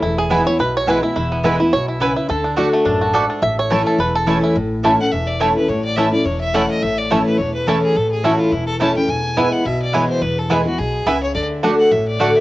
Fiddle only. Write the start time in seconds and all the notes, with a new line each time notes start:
5.00 F#5
5.12 E5
5.27 D5
5.40 C#5
5.57 B4
5.69 C#5
5.84 D5
5.96 E5
6.13 D5
6.25 C#5
6.40 E5
6.54 F#5
6.70 D#5
6.82 E5
6.98 D5
7.11 C#5
7.26 B4
7.38 C#5
7.54 B4
7.67 A4
7.83 G#4
7.97 A4
8.12 G#4
8.25 F#4
8.39 F4
8.52 E4
8.67 A4
8.81 A5
8.96 G5
9.10 G#5
9.52 F#5
9.66 E5
9.82 D5
9.94 C#5
10.09 C5
10.22 B4
10.39 A4
10.50 G#4
10.66 F#4
10.79 G#4
11.06 E5
11.23 C#5
11.34 D5
11.79 F#5
11.91 E5
12.07 D5
12.35 E5